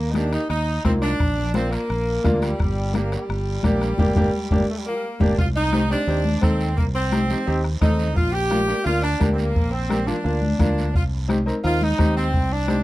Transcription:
Already playing: D#2
0.11 D#4, high conga
0.15 A#3 D4 D#4 G4, bombo rim, short guiro
0.33 D#4, bombo rim, short guiro
0.49 D#2 D#4, bombo rim, high conga, long guiro
0.84 C2 A#3 C4 D#4 F4, bombo low, bombo rim, high conga, short guiro
1.01 D4, bombo rim, short guiro
1.20 A#1, bombo low, bombo rim, high conga, long guiro
1.37 low conga
1.54 A#3 C4 D4 F4, bombo rim, high conga, short guiro
1.71 A#3, bombo rim, short guiro
1.89 A#1, bombo rim, high conga, long guiro
2.24 D2 A#3 D4 F4, bombo low, bombo rim, high conga, low conga, short guiro
2.41 G3, bombo rim, short guiro
2.60 G1, bombo low, bombo rim, high conga, long guiro
2.94 A#3 D4 G4, bombo rim, high conga, short guiro
3.12 G3, bombo rim, short guiro
3.29 G1, bombo rim, high conga, long guiro
3.63 A#1 A#3 D4 G4, bombo low, bombo rim, high conga, short guiro
3.81 bombo rim, short guiro
3.98 G1 A#3 D4 G4, bombo low, high conga, long guiro
4.16 G1 A#3 D4 G4, bombo low, high conga, long guiro
4.51 G1 A#3 D4 G4, bombo low, high conga, long guiro
4.68 A3
4.76 G3
4.86 F3 A#3
4.94 G3
5.20 G1 A#3 D4 G4, bombo low, high conga, long guiro
5.38 C2 F4, bombo low, long guiro
5.55 D#4
5.72 C4 D#4 G4, bombo rim, high conga, short guiro
5.90 C4 D4 D#4 G4, short guiro
6.07 D#2 C4 D#4 G4, long guiro
6.25 high conga
6.42 D#2 C4 D#4 A4, bombo low, bombo rim, high conga, short guiro
6.61 short guiro
6.77 C2 A#3, bombo low, long guiro
6.93 C4
7.12 C4 D#4 G4, bombo rim, high conga, short guiro
7.29 C4 D#4 G4, low conga, short guiro
7.47 D#2 C4 D#4 G4, long guiro
7.64 bombo rim
7.80 D#2 C4 D#4 A4, bombo low, bombo rim, high conga, low conga, short guiro
7.99 short guiro
8.15 A#1 F4, bombo low, long guiro
8.33 G4
8.50 A#3 D4 F4, bombo rim, high conga, short guiro
8.68 A#3 D4 G4, short guiro
8.85 D2 A#3 D4 F4, long guiro
9.02 D4, bombo rim
9.20 D2 A#3 D4 G4, bombo low, bombo rim, high conga, short guiro
9.33 C4
9.38 A#3, short guiro
9.56 A#1, bombo low, long guiro
9.71 C4
9.89 A#3 D4 G4, bombo rim, high conga, short guiro
10.07 A#3 D4 F4, low conga, short guiro
10.24 D2 A#3 D4 F4, long guiro
10.42 high conga
10.59 D2 A#3 D4 F4, bombo low, bombo rim, high conga, low conga, short guiro
10.78 short guiro
10.95 C2 F4, bombo low, long guiro
11.28 C4 D#4 G4, bombo rim, high conga, short guiro
11.46 C4 D#4 A#4, short guiro
11.64 D#2 C4 D#4 F4 A#4, long guiro
11.81 D#4, high conga
11.98 D#2 C4 D#4 G4, bombo low, bombo rim, high conga, short guiro
12.17 C4, short guiro
12.34 C2, bombo low, long guiro
12.50 D4
12.68 C4 D#4 G4, bombo rim, high conga, short guiro

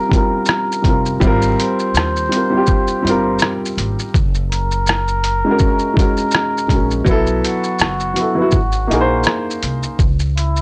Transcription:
Already playing: G3 C4 F4 A#4
0.09 G3 C4, kick
0.13 F4 A#4, closed hi-hat, shaker
0.46 cross-stick, shaker
0.72 shaker
0.82 F1 G3 C4, kick, closed hi-hat, shaker
0.87 F4 A#4
1.06 shaker
1.20 G#1 G3 C4, kick, shaker
1.25 F4 A#4
1.42 shaker
1.60 C5, closed hi-hat, shaker
1.79 shaker
1.94 D#2, cross-stick, shaker
2.16 shaker
2.29 G3 C4, closed hi-hat, shaker
2.34 F4 A#4
2.50 G3 C4
2.55 F4 G4
2.67 kick, shaker
2.87 shaker
3.02 G1 G3 C4
3.07 F4 A#4, closed hi-hat, shaker
3.39 cross-stick, shaker
3.65 shaker
3.77 G#1, closed hi-hat, shaker
3.99 shaker
4.14 F#1, kick, shaker
4.35 shaker
4.52 A#4, closed hi-hat, shaker
4.71 shaker
4.87 cross-stick, shaker
5.08 shaker
5.24 closed hi-hat, shaker
5.45 G#3 C#4
5.49 F#4 A#4
5.59 kick, shaker
5.79 shaker
5.94 G#3 C#4, kick
5.98 F#4 A#4, closed hi-hat, shaker
6.17 shaker
6.31 cross-stick, shaker
6.58 shaker
6.68 A#1 G#3 C#4, kick, closed hi-hat, shaker
6.73 F#4 A#4
6.91 shaker
7.05 B1 F#3 B3, kick, shaker
7.09 E4 A4
7.27 shaker
7.45 F#4, closed hi-hat, shaker
7.64 shaker
7.79 F#1, cross-stick, shaker
8.00 shaker
8.14 F#3 B3, closed hi-hat, shaker
8.19 E4 A4
8.35 F#3 B3
8.39 E4 F#4
8.51 G#1, kick, shaker
8.72 shaker
8.87 A#1 A#3 D#4, closed hi-hat, shaker
8.92 G#4 A#4
9.01 C5
9.23 cross-stick, shaker
9.50 shaker
9.63 C2, closed hi-hat, shaker
9.83 shaker
9.99 C#2, kick, shaker
10.19 shaker
10.37 E4, closed hi-hat, shaker
10.56 shaker

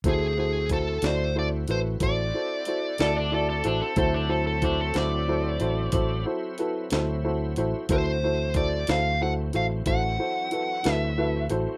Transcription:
0.04 D2 C4 E4 F#4 A4 C5, kick, closed hi-hat
0.09 G#4
0.37 E4 F#4 A4 C5
0.69 E4 F#4 A4 C5, kick, closed hi-hat
1.02 D2 E4 F#4 A4 D5, snare, closed hi-hat
1.06 C5
1.35 E4 F#4 A4 C5 D5
1.68 A1 E4 F#4 A4 B4 C5, closed hi-hat
2.00 A1 E4 F#4 A4 C5 D5, kick, closed hi-hat
2.34 E4 F#4 A4 C5
2.65 E4 F#4 A4 C5, closed hi-hat
2.98 D2 E4 F#4 A4 D5, snare, closed hi-hat
3.17 D4
3.31 E4 F#4 A4 D5
3.49 A4
3.64 A1 D4 E4 F#4 A4 C5, closed hi-hat
3.82 A4
3.96 D2 F#3 C4 E4 F#4 A4 C5, kick, closed hi-hat
4.14 D4
4.29 E4 F#4 A4 C5
4.47 A4
4.62 D4 E4 F#4 A4 C5, kick, closed hi-hat
4.81 A4
4.94 D2 E4 F#4 A4 C5, snare, closed hi-hat
4.98 D5
5.28 E4 F#4 A4 C5
5.60 A1 E4 F#4 A4 C5, closed hi-hat
5.92 A1 E4 F#4 A4 C5, kick, closed hi-hat
6.25 E4 F#4 A4 C5
6.58 E4 F#4 A4 B4, closed hi-hat
6.90 D2 E4 F#4 A4 C5, snare, closed hi-hat
7.24 E4 F#4 A4 C5
7.56 A1 E4 F#4 A4 C5, closed hi-hat
7.89 D2 E3 F#3 C4 E4 F#4 A4 C5, kick, closed hi-hat
8.23 E4 F#4 A4 C5
8.54 E4 F#4 A4 C5 D5, kick, closed hi-hat
8.87 D2 E4 F#4 A4 C5 F5, snare, closed hi-hat
9.21 E4 F#4 A4 C5 F#5
9.53 A1 E4 F#4 A4 C5 F5, closed hi-hat
9.86 A1 E4 F#4 A4 C5 F#5, kick, closed hi-hat
10.19 E4 F#4 A4 C5
10.51 E4 F#4 A4 B4, closed hi-hat
10.83 D2 E4 F#4 A4 B4, snare, closed hi-hat
10.93 E5
11.17 E4 F#4 A4 B4
11.49 A1 E4 F#4 A4 C5, closed hi-hat

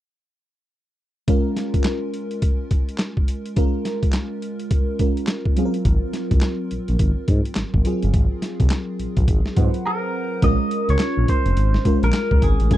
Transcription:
1.28 G#3 C#4 F4 A#4, kick, closed hi-hat
1.56 snare, closed hi-hat
1.74 kick, closed hi-hat
1.84 snare, clap, closed hi-hat
2.14 closed hi-hat
2.31 closed hi-hat
2.42 kick, closed hi-hat
2.71 kick, closed hi-hat
2.89 closed hi-hat
2.98 snare, clap, closed hi-hat
3.17 kick
3.28 closed hi-hat
3.46 closed hi-hat
3.56 G#3 C#4 F4 A#4, kick, closed hi-hat
3.85 snare, closed hi-hat
4.03 kick, closed hi-hat
4.13 snare, clap, closed hi-hat
4.42 closed hi-hat
4.59 closed hi-hat
4.71 kick, closed hi-hat
4.99 G#3 C#4 F4 A#4, kick, closed hi-hat
5.17 closed hi-hat
5.27 snare, clap, closed hi-hat
5.45 kick
5.56 F#3 C4 F4 G#4, closed hi-hat
5.65 A#4
5.74 closed hi-hat
5.85 G#1, kick, closed hi-hat
6.13 snare, closed hi-hat
6.31 C2, kick, closed hi-hat
6.41 snare, clap, closed hi-hat
6.71 A#1, closed hi-hat
6.88 A#1, closed hi-hat
6.99 G#1, kick, closed hi-hat
7.28 G#2, kick, closed hi-hat
7.45 closed hi-hat
7.55 G#1, snare, clap, closed hi-hat
7.74 G#1, kick
7.85 F#3 C4 F4 G#4, closed hi-hat
8.02 G1, closed hi-hat
8.14 G#1, kick, closed hi-hat
8.42 snare, closed hi-hat
8.60 C2, kick, closed hi-hat
8.70 snare, clap, closed hi-hat
8.99 A#1, closed hi-hat
9.17 A#1, kick, closed hi-hat
9.28 G#1, kick, closed hi-hat
9.46 snare
9.56 G#2 F#3 C4 F4 B4 F#5, kick, closed hi-hat
9.64 C5
9.74 closed hi-hat
9.86 A#4 A#5
10.42 A#1 G#3 C#4 F4 A#4 D#5, kick, closed hi-hat
10.71 closed hi-hat
10.89 C#2 C#5, closed hi-hat
10.99 snare, clap, closed hi-hat
11.17 A#1
11.28 C5, kick, closed hi-hat
11.46 F1, closed hi-hat
11.57 G#1, closed hi-hat
11.74 snare
11.85 G#3 C#4 F4 A#4, kick, closed hi-hat
12.03 A#1 A#4, closed hi-hat
12.13 snare, clap, closed hi-hat
12.31 C#2, kick
12.42 G#1 G#4, kick, closed hi-hat
12.60 A1, closed hi-hat
12.71 A#1 G#3 C#4 F4 G#4 A4, kick, closed hi-hat

